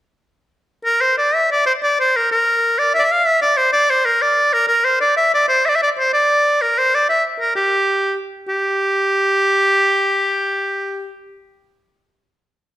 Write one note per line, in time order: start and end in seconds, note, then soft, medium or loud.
0.85 1.02 A#4 medium
1.01 1.17 C5 medium
1.18 1.36 D5 medium
1.35 1.50 E5 medium
1.51 1.65 D5 medium
1.66 1.73 C5 medium
1.83 1.97 D5 medium
2.00 2.18 C5 medium
2.16 2.31 A#4 medium
2.32 2.80 A#4 medium
2.78 2.94 D5 medium
2.94 3.01 E5 medium
2.99 3.04 D5 medium
2.99 3.13 E5 medium
3.11 3.28 F5 medium
3.26 3.41 E5 medium
3.42 3.59 D5 medium
3.57 3.72 C5 medium
3.73 3.92 D5 medium
3.90 4.07 C5 medium
4.06 4.23 A#4 medium
4.22 4.55 D5 medium
4.53 4.67 A#4 medium
4.67 4.86 A#4 medium
4.84 5.00 C5 medium
5.01 5.16 D5 medium
5.17 5.32 E5 medium
5.34 5.48 D5 medium
5.49 5.67 C5 medium
5.65 5.77 D5 medium
5.65 5.71 E5 medium
5.76 5.82 E5 medium
5.83 5.90 D5 medium
5.99 6.12 C5 medium
6.13 6.63 D5 medium
6.62 6.79 A#4 medium
6.78 6.96 C5 medium
6.94 7.09 D5 medium
7.09 7.23 E5 medium
7.40 7.55 A#4 medium
7.55 8.14 G4 medium
8.49 11.12 G4 medium